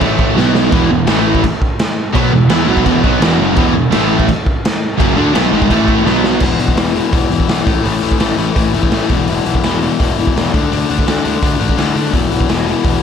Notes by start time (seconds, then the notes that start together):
0.00 A1 A2 E3 A3, kick, crash
0.19 kick
0.36 B1 B2 F#3 B3, snare
0.55 snare
0.72 E1 E2 B2 E3, kick, crash
0.89 E1 E2 B2
1.07 A1 A2 E3 A3, snare, crash
1.35 kick
1.44 kick, crash
1.62 kick
1.79 snare, crash
2.13 B1 B2 F#3 B3, kick, crash
2.32 E1 E2 B2
2.50 E2 E3 B3 E4, snare, crash
2.67 B1 B2 F#3 B3
2.77 kick
2.86 E1 E2 B2 E3, kick, crash
3.04 B1 B2 F#3 B3, kick
3.21 E1 E2 B2 E3, snare, crash
3.40 F#1 F#2 C#3 F#3
3.56 E1 E2 B2 E3, kick, crash
3.75 E1 E2 B2
3.92 A1 A2 E3 A3, snare, crash
4.20 kick
4.29 kick, crash
4.46 kick
4.65 snare, crash
4.99 F#1 F#2 C#3 F#3, kick, crash
5.17 D2 D3 A3 D4
5.33 B1 B2 F#3 B3, snare, crash
5.52 G#1 G#2 D#3 G#3
5.62 kick
5.69 A1 A2 E3 A3, kick, crash
5.88 kick
6.06 B1 B2 F#3 B3, snare
6.24 snare
6.40 E1 E2 B2 E3, kick, crash
6.59 B1 E2 B2 E3, open hi-hat
6.68 kick
6.75 E1 E2 B2 E3, snare, open hi-hat
6.93 E2 B2 E3, open hi-hat
7.11 E1 E2 B2 E3, kick, open hi-hat
7.30 E1 E2 B2 E3, open hi-hat
7.40 kick
7.48 B1 E2 B2 E3, snare, open hi-hat
7.64 A1 A2 E3 A3, kick, open hi-hat
7.83 A1 A2 E3 A3, open hi-hat
8.01 A1 A2 E3 A3, open hi-hat
8.12 kick
8.19 A1 A2 E3 A3, snare, open hi-hat
8.37 A1 A2 E3 A3, open hi-hat
8.54 A1 A2 E3 A3, kick, open hi-hat
8.73 E1 A2 E3 A3, open hi-hat
8.83 kick
8.91 A1 A2 E3 A3, snare, open hi-hat
9.09 E1 E2 B2 E3, kick, open hi-hat
9.28 E1 E2 B2 E3, open hi-hat
9.45 B1 E2 B2 E3, open hi-hat
9.55 kick
9.63 E1 E2 B2 E3, snare, open hi-hat
9.81 E2 B2 E3, open hi-hat
9.99 E1 E2 B2 E3, kick, open hi-hat
10.17 E1 E2 B2 E3, open hi-hat
10.27 kick
10.35 E1 E2 B2 E3, snare, open hi-hat
10.53 D2 D3 A3 D4, kick, open hi-hat
10.71 D2 D3 A3 D4, open hi-hat
10.89 D2 D3 A3 D4, open hi-hat
10.99 kick
11.06 D2 D3 A3 D4, snare, open hi-hat
11.24 D2 D3 A3 D4, open hi-hat
11.42 D2 D3 A3 D4, kick, open hi-hat
11.59 A1 D3 A3 D4, open hi-hat
11.69 kick
11.76 D2 D3 A3 D4, snare, open hi-hat
11.95 D3 A3 D4, open hi-hat
12.12 E1 E2 B2 E3, kick, open hi-hat
12.30 B1 E2 B2 E3, open hi-hat
12.40 kick
12.48 E1 E2 B2 E3, snare, open hi-hat
12.65 E2 B2 E3, open hi-hat
12.84 E1 E2 B2 E3, kick, open hi-hat